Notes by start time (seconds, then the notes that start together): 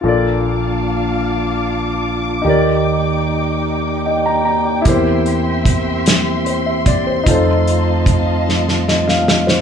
0.01 A#1 A#2 F3 A#3 D4 F4 A4 F5 A5 D6
0.06 A#4 D5
2.42 D#2 D#3 D#4 G4 D5 G5
2.47 A#4 D5
4.06 D#5 G5
4.26 G5 A#5
4.45 A#5
4.65 G5
4.82 E2 E3 E4 G4 E5 C6, closed hi-hat
4.86 E3 C4 A#4 C5, kick
5.26 closed hi-hat
5.65 kick, closed hi-hat
6.06 snare, closed hi-hat
6.46 C5, closed hi-hat
6.66 E5
6.86 D5, kick, closed hi-hat
7.07 C5
7.24 F2 D#3 A3 D#4 F4 D#5 F5 A5, kick, closed hi-hat
7.28 A4 C5
7.67 closed hi-hat
8.06 kick, closed hi-hat
8.49 snare
8.69 snare
8.88 D#5, snare
9.08 F5, snare
9.28 D#5, snare
9.47 C5, snare